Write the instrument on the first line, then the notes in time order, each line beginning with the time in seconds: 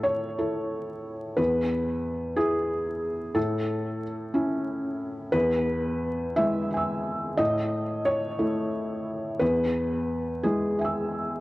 felt piano
Already playing: A2 A4
0.03 C#5
0.38 E4 A4
1.37 E2 B4
2.37 E4 G#4
3.35 A2 A4
4.34 C#4 E4
5.32 E2 B4
6.36 G#3 E4 E5
6.71 E5 G#5
6.77 E6
7.38 A2 D#5
8.05 C#5
8.39 A3 E4
9.39 E2 B4
10.43 G#3 E4 G#4
10.79 E5 G#5
10.84 E6